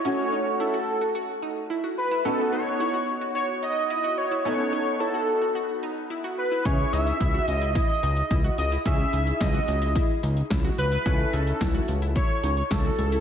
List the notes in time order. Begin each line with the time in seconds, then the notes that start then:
0.05 A3 C#4 F#4 C#5
0.32 D#4
0.60 E4 A4
0.74 F#4
1.01 F#4
1.15 F#4
1.42 D#4
1.70 E4
1.84 F#4
1.98 B4
2.11 E4
2.25 B3 C#4 D#4 F#4 A4
2.53 D#4 C#5
2.80 E4
2.94 F#4
3.21 F#4
3.35 F#4 C#5
3.63 D#4 D#5
3.90 E4
4.04 F#4
4.18 C#5
4.31 E4
4.45 B3 C#4 D#4 A4 C#5
4.73 D#4
5.00 E4 A4
5.14 F#4
5.42 F#4
5.55 F#4
5.83 D#4
6.10 E4
6.24 F#4
6.38 B4
6.52 E4
6.65 C#2 C#4 E4 G#4 C#5, kick, closed hi-hat
6.93 C#2 D#4 E5, closed hi-hat
7.07 closed hi-hat
7.20 C#2 E4, kick, closed hi-hat
7.34 F#4
7.47 C#2 D#5, closed hi-hat
7.62 E4, closed hi-hat
7.75 E4 D#5, kick, closed hi-hat
8.03 C#2 D#4, closed hi-hat
8.17 closed hi-hat
8.31 C#2 E4, kick, closed hi-hat
8.44 F#4
8.58 C#2 D#5, closed hi-hat
8.72 E4, closed hi-hat
8.86 C#2 C#4 E4 G#4 E5, kick, closed hi-hat
9.13 C#2 D#4, closed hi-hat
9.27 closed hi-hat
9.41 C#2 E4 D#5, kick, snare, closed hi-hat
9.54 F#4
9.68 C#2, closed hi-hat
9.82 E4, closed hi-hat
9.95 E4, kick, closed hi-hat
10.23 C#2 D#4, closed hi-hat
10.37 closed hi-hat
10.50 C#2 E4, kick, snare, closed hi-hat
10.64 F#4
10.78 C#2 B4, closed hi-hat
10.92 E4, closed hi-hat
11.06 C#2 C#4 E4 A4, kick, closed hi-hat
11.33 C#2 D#4 A4, closed hi-hat
11.47 closed hi-hat
11.61 C#2 E4, kick, snare, closed hi-hat
11.75 F#4
11.88 C#2, closed hi-hat
12.02 E4, closed hi-hat
12.16 E4 C#5, kick, closed hi-hat
12.43 C#2 D#4, closed hi-hat
12.57 C#5, closed hi-hat
12.71 C#2 E4 A4, kick, snare, closed hi-hat
12.85 F#4
12.98 C#2, closed hi-hat
13.12 E4, closed hi-hat